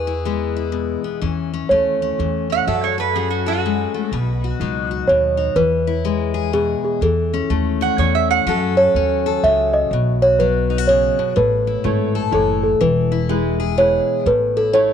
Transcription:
Already playing: E2 E3 G#4 B4
0.07 E4
0.25 G#3 B3
0.57 E4
0.72 B2
1.04 B3
1.21 E2 E3 C#4
1.54 C#4
1.69 D#2 A3 C#4 C#5
2.02 C#4
2.19 E2 E3
2.50 C#4 F#5
2.67 F#2 F#3 A4 E5
2.84 C#5
2.98 A4 B4
3.16 C#4 F#4 G#4
3.30 F#4
3.46 F#4 A4
3.66 G#3
3.94 A3
4.12 B1 B2 B4
4.44 F#4
4.60 C#2 F#3 D#4
4.91 F#4
5.08 D#2 B2 C#5
5.37 D#4
5.56 E2 E3 B4
5.87 E4
6.05 G#3
6.34 G#4
6.53 B2 G#4
6.84 G#4
7.01 E2 E3 A4
7.34 C#4
7.50 D#2 A3
7.81 C#5 F#5
7.98 E2 E3 C#5
8.15 E5
8.31 F#5
8.46 F#2 F#3 C#4 F#4 A4
8.77 A4 C#5
8.94 D#2 C#4
9.26 A4
9.43 C#2 C#3 E5
9.74 D#5
9.91 B1 B2
10.22 F#4 C#5
10.39 F#3 B4
10.70 D#4
10.78 F#4
10.88 C#3 C#5
11.19 B2
11.36 A1 A2 B4
11.67 E4
11.84 G#1 A3 E4 A4 C#5
12.15 A4
12.31 F#1 E3 E4 A4 C#5
12.63 A4
12.81 E1 E3 B4
13.12 E4
13.29 G#3 E4 G#4 B4
13.60 G#4
13.78 B2 E4 G#4 B4 C#5
14.26 A1 A2 B4
14.57 E4 A4
14.73 A3 E4 A4 C#5

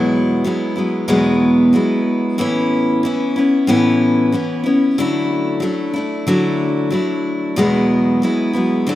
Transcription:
Already playing: E2 B2 F#3 G#3 B3 E4
0.44 F#3 G#3 B3 E4
0.76 F#3 G#3 B3 E4
1.08 E2 B2 F#3 G#3 B3 E4
1.73 F#3 G#3 B3 E4
2.38 A2 E3 B3 C#4 E4
3.03 E3 B3 C#4 E4
3.36 B3 C#4 E4
3.67 A2 E3 B3 C#4 E4
4.32 E3 B3 C#4 E4
4.64 B3 C#4 E4
4.98 D3 F#3 A3 D4 E4
5.60 F#3 A3 D4 E4
5.93 D4 E4
5.98 A3
6.27 D3 F#3 A3 D4 E4
6.90 F#3 A3 D4 E4
7.56 E2 B2 F#3 G#3 B3 E4
8.22 F#3 G#3 B3 E4
8.53 F#3 G#3 B3 E4
8.87 D3 F#3 A3 D4 E4

